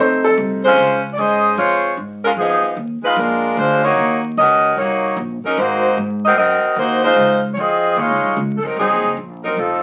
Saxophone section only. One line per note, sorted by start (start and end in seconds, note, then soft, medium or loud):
0.64 1.01 G#3 loud
0.64 1.01 C#4 loud
0.64 1.02 F4 loud
0.64 1.01 C5 loud
1.14 1.18 D5 medium
1.18 1.58 C#4 medium
1.18 1.58 G#4 loud
1.18 1.57 C5 medium
1.18 1.58 D#5 loud
1.58 1.95 G#3 medium
1.58 1.95 F4 medium
1.58 1.95 C5 medium
1.58 1.96 C#5 loud
2.24 2.30 G#3 medium
2.24 2.30 C#4 medium
2.24 2.31 F4 medium
2.24 2.31 A#4 medium
2.38 2.75 F3 medium
2.38 2.75 B3 medium
2.38 2.75 D#4 medium
2.38 2.75 G#4 loud
3.04 3.17 G#3 medium
3.04 3.17 D#4 medium
3.04 3.17 F4 medium
3.04 3.17 B4 loud
3.19 3.57 G#3 medium
3.19 3.57 D4 medium
3.19 3.57 F4 medium
3.19 3.58 A#4 loud
3.58 3.84 G#3 loud
3.58 3.84 D4 medium
3.58 3.83 F4 medium
3.58 3.83 C5 loud
3.84 4.21 A#3 loud
3.84 4.21 D#4 loud
3.84 4.21 F#4 medium
3.84 4.21 C#5 loud
4.38 4.75 C#4 medium
4.38 4.75 F#4 loud
4.38 4.75 A#4 medium
4.38 4.75 D#5 loud
4.79 5.18 A#3 medium
4.79 5.18 D#4 medium
4.79 5.18 F#4 medium
4.79 5.18 C#5 loud
5.45 5.58 F#3 medium
5.45 5.58 C#4 medium
5.45 5.58 D#4 medium
5.45 5.57 A#4 loud
5.59 5.98 A#3 medium
5.59 5.98 D#4 loud
5.59 5.98 F#4 loud
5.59 5.98 C5 loud
6.25 6.38 C4 loud
6.25 6.37 F#4 medium
6.25 6.37 A#4 medium
6.25 6.37 D#5 loud
6.38 6.75 C4 medium
6.38 6.75 F#4 medium
6.38 6.75 A#4 loud
6.38 6.75 D#5 loud
6.79 7.04 A#3 medium
6.79 7.03 D#4 medium
6.79 7.04 F#4 medium
6.79 7.03 C5 loud
7.04 7.41 G#3 medium
7.04 7.41 D#4 loud
7.04 7.41 F4 medium
7.04 7.41 C5 loud
7.54 7.58 C#5 medium
7.59 7.98 C4 medium
7.59 7.98 F4 medium
7.59 7.98 G#4 medium
7.59 7.98 D#5 loud
7.99 8.38 G#3 medium
7.99 8.38 D#4 medium
7.99 8.38 F4 medium
7.99 8.38 C#5 loud
8.58 8.63 A4 medium
8.64 8.78 F#3 medium
8.64 8.78 C4 medium
8.64 8.78 D#4 medium
8.64 8.78 A#4 loud
8.79 9.16 F#3 medium
8.79 9.15 C4 medium
8.79 9.16 D#4 medium
8.79 9.15 G#4 loud
9.44 9.57 F#3 medium
9.44 9.57 C4 medium
9.44 9.57 D#4 medium
9.44 9.57 A#4 medium
9.59 9.83 F3 medium
9.59 9.83 C4 medium
9.59 9.83 D#4 medium
9.59 9.83 A4 medium